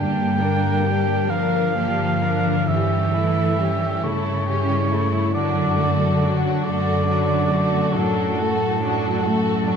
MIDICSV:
0, 0, Header, 1, 9, 480
1, 0, Start_track
1, 0, Tempo, 914634
1, 1888, Tempo, 868307
1, 2852, Time_signature, 12, 3, 24, 8
1, 4768, Tempo, 842697
1, 5313, End_track
2, 0, Start_track
2, 0, Title_t, "Cor anglais"
2, 0, Program_c, 0, 69
2, 0, Note_on_c, 0, 79, 69
2, 683, Note_on_c, 0, 77, 61
2, 691, Note_off_c, 0, 79, 0
2, 1406, Note_on_c, 0, 76, 58
2, 1414, Note_off_c, 0, 77, 0
2, 2127, Note_off_c, 0, 76, 0
2, 2130, Note_on_c, 0, 73, 63
2, 2838, Note_off_c, 0, 73, 0
2, 2854, Note_on_c, 0, 74, 71
2, 3412, Note_off_c, 0, 74, 0
2, 3562, Note_on_c, 0, 74, 68
2, 4284, Note_on_c, 0, 69, 64
2, 4292, Note_off_c, 0, 74, 0
2, 5313, Note_off_c, 0, 69, 0
2, 5313, End_track
3, 0, Start_track
3, 0, Title_t, "Violin section"
3, 0, Program_c, 1, 48
3, 0, Note_on_c, 1, 67, 34
3, 188, Note_off_c, 1, 67, 0
3, 200, Note_on_c, 1, 70, 34
3, 438, Note_on_c, 1, 67, 34
3, 445, Note_off_c, 1, 70, 0
3, 674, Note_on_c, 1, 70, 34
3, 681, Note_off_c, 1, 67, 0
3, 914, Note_on_c, 1, 67, 33
3, 918, Note_off_c, 1, 70, 0
3, 1142, Note_off_c, 1, 67, 0
3, 1159, Note_on_c, 1, 70, 30
3, 1403, Note_on_c, 1, 67, 33
3, 1406, Note_off_c, 1, 70, 0
3, 1631, Note_off_c, 1, 67, 0
3, 1639, Note_on_c, 1, 69, 34
3, 1881, Note_on_c, 1, 67, 35
3, 1882, Note_off_c, 1, 69, 0
3, 2127, Note_off_c, 1, 67, 0
3, 2127, Note_on_c, 1, 69, 37
3, 2370, Note_off_c, 1, 69, 0
3, 2370, Note_on_c, 1, 67, 35
3, 2595, Note_off_c, 1, 67, 0
3, 2607, Note_on_c, 1, 69, 30
3, 2848, Note_on_c, 1, 66, 37
3, 2849, Note_off_c, 1, 69, 0
3, 3073, Note_off_c, 1, 66, 0
3, 3088, Note_on_c, 1, 69, 39
3, 3328, Note_on_c, 1, 66, 41
3, 3331, Note_off_c, 1, 69, 0
3, 3570, Note_off_c, 1, 66, 0
3, 3573, Note_on_c, 1, 69, 39
3, 3808, Note_on_c, 1, 66, 35
3, 3810, Note_off_c, 1, 69, 0
3, 4030, Note_off_c, 1, 66, 0
3, 4049, Note_on_c, 1, 69, 41
3, 4289, Note_off_c, 1, 69, 0
3, 4289, Note_on_c, 1, 66, 37
3, 4530, Note_off_c, 1, 66, 0
3, 4530, Note_on_c, 1, 69, 39
3, 4769, Note_off_c, 1, 69, 0
3, 4779, Note_on_c, 1, 66, 42
3, 5000, Note_off_c, 1, 66, 0
3, 5014, Note_on_c, 1, 69, 44
3, 5251, Note_off_c, 1, 69, 0
3, 5255, Note_on_c, 1, 66, 39
3, 5313, Note_off_c, 1, 66, 0
3, 5313, End_track
4, 0, Start_track
4, 0, Title_t, "Harp"
4, 0, Program_c, 2, 46
4, 0, Note_on_c, 2, 43, 42
4, 89, Note_on_c, 2, 50, 26
4, 209, Note_on_c, 2, 62, 31
4, 330, Note_on_c, 2, 67, 32
4, 450, Note_on_c, 2, 70, 29
4, 560, Note_off_c, 2, 67, 0
4, 566, Note_on_c, 2, 67, 27
4, 679, Note_off_c, 2, 70, 0
4, 685, Note_on_c, 2, 70, 27
4, 797, Note_off_c, 2, 67, 0
4, 804, Note_on_c, 2, 67, 32
4, 917, Note_off_c, 2, 62, 0
4, 923, Note_on_c, 2, 62, 26
4, 1037, Note_off_c, 2, 50, 0
4, 1043, Note_on_c, 2, 50, 30
4, 1157, Note_off_c, 2, 62, 0
4, 1163, Note_on_c, 2, 62, 31
4, 1278, Note_off_c, 2, 50, 0
4, 1285, Note_on_c, 2, 50, 30
4, 1400, Note_off_c, 2, 43, 0
4, 1406, Note_on_c, 2, 43, 38
4, 1427, Note_off_c, 2, 50, 0
4, 1427, Note_off_c, 2, 62, 0
4, 1427, Note_off_c, 2, 70, 0
4, 1527, Note_on_c, 2, 55, 26
4, 1648, Note_on_c, 2, 64, 32
4, 1768, Note_on_c, 2, 69, 28
4, 1882, Note_on_c, 2, 73, 29
4, 1998, Note_off_c, 2, 69, 0
4, 2005, Note_on_c, 2, 69, 32
4, 2121, Note_off_c, 2, 73, 0
4, 2127, Note_on_c, 2, 73, 35
4, 2241, Note_off_c, 2, 69, 0
4, 2247, Note_on_c, 2, 69, 27
4, 2363, Note_off_c, 2, 64, 0
4, 2369, Note_on_c, 2, 64, 36
4, 2482, Note_off_c, 2, 55, 0
4, 2489, Note_on_c, 2, 55, 30
4, 2604, Note_off_c, 2, 64, 0
4, 2611, Note_on_c, 2, 64, 34
4, 2725, Note_off_c, 2, 55, 0
4, 2731, Note_on_c, 2, 55, 29
4, 2852, Note_on_c, 2, 42, 45
4, 2870, Note_off_c, 2, 43, 0
4, 2870, Note_off_c, 2, 55, 0
4, 2870, Note_off_c, 2, 64, 0
4, 2870, Note_off_c, 2, 67, 0
4, 2870, Note_off_c, 2, 73, 0
4, 2968, Note_on_c, 2, 54, 29
4, 3091, Note_on_c, 2, 62, 34
4, 3204, Note_off_c, 2, 69, 0
4, 3211, Note_on_c, 2, 69, 34
4, 3331, Note_on_c, 2, 74, 36
4, 3447, Note_off_c, 2, 69, 0
4, 3453, Note_on_c, 2, 69, 36
4, 3566, Note_off_c, 2, 74, 0
4, 3573, Note_on_c, 2, 74, 36
4, 3687, Note_off_c, 2, 69, 0
4, 3694, Note_on_c, 2, 69, 39
4, 3804, Note_off_c, 2, 62, 0
4, 3810, Note_on_c, 2, 62, 32
4, 3919, Note_off_c, 2, 54, 0
4, 3926, Note_on_c, 2, 54, 38
4, 4039, Note_off_c, 2, 62, 0
4, 4046, Note_on_c, 2, 62, 34
4, 4158, Note_off_c, 2, 54, 0
4, 4165, Note_on_c, 2, 54, 37
4, 4281, Note_off_c, 2, 42, 0
4, 4287, Note_on_c, 2, 42, 44
4, 4401, Note_off_c, 2, 62, 0
4, 4408, Note_on_c, 2, 62, 35
4, 4521, Note_off_c, 2, 54, 0
4, 4527, Note_on_c, 2, 54, 40
4, 4641, Note_off_c, 2, 69, 0
4, 4648, Note_on_c, 2, 69, 41
4, 4759, Note_off_c, 2, 74, 0
4, 4766, Note_on_c, 2, 74, 41
4, 4878, Note_off_c, 2, 69, 0
4, 4885, Note_on_c, 2, 69, 38
4, 5000, Note_off_c, 2, 74, 0
4, 5007, Note_on_c, 2, 74, 44
4, 5121, Note_off_c, 2, 69, 0
4, 5128, Note_on_c, 2, 69, 38
4, 5238, Note_off_c, 2, 62, 0
4, 5245, Note_on_c, 2, 62, 44
4, 5313, Note_off_c, 2, 42, 0
4, 5313, Note_off_c, 2, 54, 0
4, 5313, Note_off_c, 2, 62, 0
4, 5313, Note_off_c, 2, 69, 0
4, 5313, Note_off_c, 2, 74, 0
4, 5313, End_track
5, 0, Start_track
5, 0, Title_t, "Violin section"
5, 0, Program_c, 3, 48
5, 0, Note_on_c, 3, 62, 33
5, 195, Note_off_c, 3, 62, 0
5, 215, Note_on_c, 3, 58, 30
5, 453, Note_off_c, 3, 58, 0
5, 455, Note_on_c, 3, 62, 30
5, 690, Note_off_c, 3, 62, 0
5, 693, Note_on_c, 3, 58, 35
5, 927, Note_on_c, 3, 62, 32
5, 928, Note_off_c, 3, 58, 0
5, 1150, Note_off_c, 3, 62, 0
5, 1170, Note_on_c, 3, 58, 30
5, 1409, Note_on_c, 3, 61, 36
5, 1411, Note_off_c, 3, 58, 0
5, 1634, Note_off_c, 3, 61, 0
5, 1648, Note_on_c, 3, 64, 37
5, 1886, Note_off_c, 3, 64, 0
5, 1890, Note_on_c, 3, 61, 34
5, 2132, Note_off_c, 3, 61, 0
5, 2136, Note_on_c, 3, 64, 40
5, 2375, Note_off_c, 3, 64, 0
5, 2376, Note_on_c, 3, 61, 39
5, 2598, Note_off_c, 3, 61, 0
5, 2615, Note_on_c, 3, 64, 34
5, 2853, Note_off_c, 3, 64, 0
5, 2853, Note_on_c, 3, 62, 40
5, 3075, Note_off_c, 3, 62, 0
5, 3092, Note_on_c, 3, 66, 36
5, 3333, Note_off_c, 3, 66, 0
5, 3336, Note_on_c, 3, 62, 34
5, 3574, Note_off_c, 3, 62, 0
5, 3575, Note_on_c, 3, 66, 43
5, 3811, Note_off_c, 3, 66, 0
5, 3814, Note_on_c, 3, 62, 38
5, 4033, Note_off_c, 3, 62, 0
5, 4048, Note_on_c, 3, 66, 38
5, 4284, Note_on_c, 3, 62, 42
5, 4288, Note_off_c, 3, 66, 0
5, 4528, Note_off_c, 3, 62, 0
5, 4531, Note_on_c, 3, 66, 40
5, 4766, Note_on_c, 3, 62, 41
5, 4770, Note_off_c, 3, 66, 0
5, 4993, Note_off_c, 3, 62, 0
5, 5007, Note_on_c, 3, 66, 45
5, 5243, Note_on_c, 3, 62, 44
5, 5247, Note_off_c, 3, 66, 0
5, 5313, Note_off_c, 3, 62, 0
5, 5313, End_track
6, 0, Start_track
6, 0, Title_t, "Viola section"
6, 0, Program_c, 4, 48
6, 0, Note_on_c, 4, 58, 33
6, 195, Note_off_c, 4, 58, 0
6, 213, Note_on_c, 4, 62, 31
6, 449, Note_on_c, 4, 58, 31
6, 452, Note_off_c, 4, 62, 0
6, 685, Note_on_c, 4, 62, 34
6, 687, Note_off_c, 4, 58, 0
6, 924, Note_off_c, 4, 62, 0
6, 926, Note_on_c, 4, 58, 34
6, 1149, Note_off_c, 4, 58, 0
6, 1167, Note_on_c, 4, 62, 36
6, 1409, Note_off_c, 4, 62, 0
6, 1410, Note_on_c, 4, 55, 34
6, 1634, Note_off_c, 4, 55, 0
6, 1651, Note_on_c, 4, 57, 32
6, 1887, Note_off_c, 4, 57, 0
6, 1890, Note_on_c, 4, 55, 34
6, 2132, Note_off_c, 4, 55, 0
6, 2133, Note_on_c, 4, 57, 34
6, 2373, Note_off_c, 4, 57, 0
6, 2376, Note_on_c, 4, 55, 37
6, 2598, Note_off_c, 4, 55, 0
6, 2613, Note_on_c, 4, 57, 31
6, 2852, Note_off_c, 4, 57, 0
6, 2855, Note_on_c, 4, 54, 43
6, 3076, Note_off_c, 4, 54, 0
6, 3095, Note_on_c, 4, 57, 36
6, 3335, Note_off_c, 4, 57, 0
6, 3338, Note_on_c, 4, 54, 40
6, 3575, Note_off_c, 4, 54, 0
6, 3575, Note_on_c, 4, 57, 39
6, 3811, Note_off_c, 4, 57, 0
6, 3812, Note_on_c, 4, 54, 40
6, 4032, Note_off_c, 4, 54, 0
6, 4050, Note_on_c, 4, 57, 44
6, 4287, Note_on_c, 4, 54, 46
6, 4289, Note_off_c, 4, 57, 0
6, 4529, Note_off_c, 4, 54, 0
6, 4533, Note_on_c, 4, 57, 38
6, 4769, Note_on_c, 4, 54, 43
6, 4771, Note_off_c, 4, 57, 0
6, 4995, Note_off_c, 4, 54, 0
6, 5013, Note_on_c, 4, 57, 45
6, 5251, Note_off_c, 4, 57, 0
6, 5252, Note_on_c, 4, 54, 44
6, 5313, Note_off_c, 4, 54, 0
6, 5313, End_track
7, 0, Start_track
7, 0, Title_t, "Cello section"
7, 0, Program_c, 5, 48
7, 0, Note_on_c, 5, 55, 44
7, 667, Note_off_c, 5, 55, 0
7, 687, Note_on_c, 5, 53, 54
7, 1394, Note_off_c, 5, 53, 0
7, 1406, Note_on_c, 5, 52, 51
7, 2129, Note_off_c, 5, 52, 0
7, 2129, Note_on_c, 5, 49, 51
7, 2851, Note_off_c, 5, 49, 0
7, 2852, Note_on_c, 5, 50, 48
7, 3558, Note_off_c, 5, 50, 0
7, 3572, Note_on_c, 5, 50, 59
7, 4273, Note_off_c, 5, 50, 0
7, 4289, Note_on_c, 5, 45, 52
7, 5313, Note_off_c, 5, 45, 0
7, 5313, End_track
8, 0, Start_track
8, 0, Title_t, "Timpani"
8, 0, Program_c, 6, 47
8, 0, Note_on_c, 6, 43, 45
8, 662, Note_off_c, 6, 43, 0
8, 1406, Note_on_c, 6, 43, 46
8, 2107, Note_off_c, 6, 43, 0
8, 5313, End_track
9, 0, Start_track
9, 0, Title_t, "Double bass section"
9, 0, Program_c, 7, 48
9, 0, Note_on_c, 7, 43, 43
9, 603, Note_off_c, 7, 43, 0
9, 686, Note_on_c, 7, 43, 44
9, 1321, Note_off_c, 7, 43, 0
9, 1409, Note_on_c, 7, 43, 47
9, 2045, Note_off_c, 7, 43, 0
9, 2129, Note_on_c, 7, 43, 40
9, 2767, Note_off_c, 7, 43, 0
9, 2852, Note_on_c, 7, 42, 49
9, 3488, Note_off_c, 7, 42, 0
9, 3572, Note_on_c, 7, 42, 51
9, 4202, Note_off_c, 7, 42, 0
9, 4285, Note_on_c, 7, 42, 49
9, 4925, Note_off_c, 7, 42, 0
9, 5011, Note_on_c, 7, 42, 55
9, 5313, Note_off_c, 7, 42, 0
9, 5313, End_track
0, 0, End_of_file